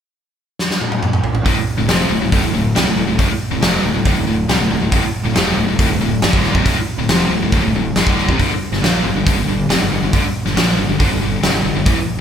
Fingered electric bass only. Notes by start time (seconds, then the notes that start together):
1.45 D1
1.56 muted fingered electric bass stroke
1.77 D1
1.87 F1
2.10 D1
2.20 D1
2.32 D1
2.42 D1
2.54 D1
2.75 C2
2.85 D1
2.96 D1
3.07 D1
3.19 D1
3.30 muted fingered electric bass stroke
3.51 D1
3.62 F1
3.83 D1
3.94 D1
4.05 D1
4.16 D1
4.27 D1
4.48 C2
4.60 D1
4.71 D1
4.81 D1
4.92 D1
5.03 muted fingered electric bass stroke
5.24 D1
5.37 F1
5.57 D1
5.68 D1
5.79 D1
5.91 D1
6.00 D1
6.22 G1
6.33 D1
6.55 F1
6.65 D1
6.77 muted fingered electric bass stroke
6.98 D1
7.09 F1
7.30 D1
7.41 D1
7.52 D1
7.63 D1
7.74 D1
7.96 G1
8.07 D1
8.28 F1
8.39 G1
8.51 muted fingered electric bass stroke
8.72 G1
8.82 A#1
9.04 G1
9.14 G1
9.26 G1
9.36 G1
9.48 G1
9.69 F1
9.81 G1
9.92 G1
10.02 G1
10.13 G1
10.24 muted fingered electric bass stroke
10.46 G1
10.56 A#1
10.79 G1
10.89 G1
10.99 G1
11.11 G1
11.22 G1
11.43 F1
11.54 G1
11.65 G1
11.76 G1
11.86 A1
11.97 muted fingered electric bass stroke
12.17 A1